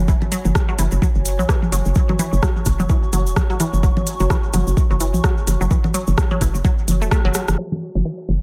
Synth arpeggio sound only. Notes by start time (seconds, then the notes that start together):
0.08 E3
0.32 F#3
0.69 F#3
0.79 E3
1.02 F#3
1.39 F#3
1.49 E3
1.72 F#3
2.09 F#3
2.19 E3
2.43 F#3
2.80 F#3
2.90 E3
3.13 F#3
3.50 F#3
3.60 E3
3.83 F#3
4.20 F#3
4.30 E3
4.54 F#3
4.91 F#3
5.01 E3
5.24 F#3
5.61 F#3
5.71 E3
5.94 F#3
6.31 F#3
6.41 E3
6.65 F#3
7.02 A3
7.11 A3
7.25 F#3
7.35 F#3
7.58 F#3
7.95 F#3
8.05 E3
8.29 F#3